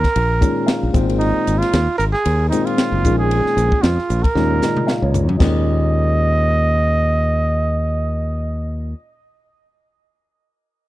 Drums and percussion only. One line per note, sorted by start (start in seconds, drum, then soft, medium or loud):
0.04 kick medium
0.04 snare soft
0.04 ride medium
0.16 ride medium
0.42 kick medium
0.42 hi-hat pedal medium
0.42 ride medium
0.68 snare loud
0.68 ride medium
0.94 kick medium
0.94 hi-hat pedal medium
0.94 ride medium
1.10 ride medium
1.21 ride medium
1.47 hi-hat pedal medium
1.47 ride medium
1.62 snare soft
1.62 ride medium
1.73 snare loud
1.73 ride medium
2.00 hi-hat pedal medium
2.00 ride medium
2.14 snare soft
2.25 ride medium
2.52 hi-hat pedal medium
2.52 ride medium
2.67 ride medium
2.78 snare loud
2.78 ride medium
3.05 kick medium
3.05 hi-hat pedal medium
3.05 ride soft
3.31 ride medium
3.46 snare soft
3.58 hi-hat pedal medium
3.58 ride medium
3.72 kick medium
3.83 snare loud
3.83 ride medium
3.98 snare soft
4.10 hi-hat pedal medium
4.10 ride medium
4.24 kick medium
4.24 ride medium
4.36 snare soft
4.62 snare medium
4.62 hi-hat pedal medium
4.77 mid tom medium
4.88 snare medium
5.14 floor tom medium
5.14 hi-hat pedal medium
5.29 floor tom medium
5.40 kick medium
5.40 snare medium
5.40 china medium